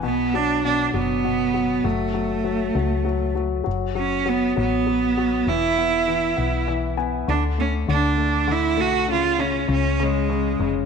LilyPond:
<<
  \new Staff \with { instrumentName = "Cello" } { \time 6/8 \key fis \minor \tempo 4. = 66 b8 d'8 d'8 b4. | a2~ a8 r8 | r8 cis'8 b8 b4. | e'2 r4 |
d'8 cis'8 d'4 e'8 fis'8 | eis'8 cis'8 cis'8 gis4 r8 | }
  \new Staff \with { instrumentName = "Grand piano" } { \clef bass \time 6/8 \key fis \minor b,8 fis8 b,8 fis8 b,8 fis8 | fis8 fis8 fis8 fis8 fis8 fis8 | fis8 fis8 fis8 fis8 fis8 fis8 | e8 b8 e8 b8 <e e''>8 <b gis''>8 |
d8 a8 d8 a8 d8 a8 | cis8 cis8 cis8 cis8 cis8 cis8 | }
  \new Staff \with { instrumentName = "FM bass" } { \clef bass \time 6/8 \key fis \minor b,,4. fis,,4. | fis,,4. cis,4. | fis,,4. a,,4. | e,,4. b,,4. |
d,4 d,4. b,,8 | cis,4 cis,4. eis,,8 | }
>>